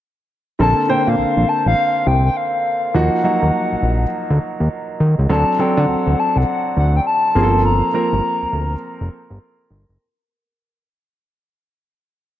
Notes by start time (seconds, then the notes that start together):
0.59 A#1 D3 A#3 C4 A4 A5
0.88 A#2 D3 A#3 C4 C5 G5
1.07 A#2 F5
1.18 A#1
1.37 A#1
1.49 A5
1.66 A1 F5
2.06 C2 G5
2.26 G5
2.37 F5
2.94 D#2 F3 A#3 D#4 F#4 F#5
3.24 F#3 A#3 D#4 F#4
3.42 D#2
3.72 A#1
3.82 A#1
4.30 D2
4.60 D#2
5.00 D#2
5.18 C#2
5.29 D2 F#3 C4 D4 A4 A5
5.59 D3 F#3 C4 D4 A4 G5
5.77 D3 F#5
5.88 D2
6.06 D2
6.19 A5
6.36 C2 F#5
6.77 D2 F#5
6.97 G5
7.07 A5
7.35 G1 F3 A#3 C4 G#4
7.43 A4
7.65 A#5
7.94 F3 A#3 C4 A#4
8.13 G1
8.42 D2
8.52 D2
9.01 F1
9.30 G1
9.70 G1
9.89 F#1